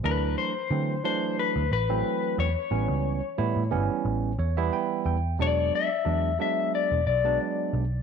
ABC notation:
X:1
M:4/4
L:1/16
Q:"Swing 16ths" 1/4=90
K:Amix
V:1 name="Clean electric guitar"
B2 =c4 c2 B2 B4 ^c2- | c12- c2 z2 | d2 e4 e2 d2 d2 z4 |]
V:2 name="Tine electric piano"
z16 | z8 z2 c e g2 g2 | z16 |]
V:3 name="Tine electric piano" clef=bass
[E,F,A,D]3 z [E,F,A,=C] z [E,F,A,D]4 z [E,F,A,C]4 z | [E,G,B,C]3 z [E,G,B,E] z [E,G,B,C]4 z [E,G,B,E]4 z | [F,^G,B,D]3 z [F,G,B,D] z [F,G,B,D]4 z [F,G,B,D]4 z |]
V:4 name="Picked electric bass" clef=bass
D,,2 z2 D,2 z3 D,, A,,,2 z2 E,, z | A,,, C,,2 z A,, A,, G,,, z A,,,2 E,,2 z2 E,,2 | E,,,2 z2 E,,2 z3 E,,, B,,,2 z2 B,,,2 |]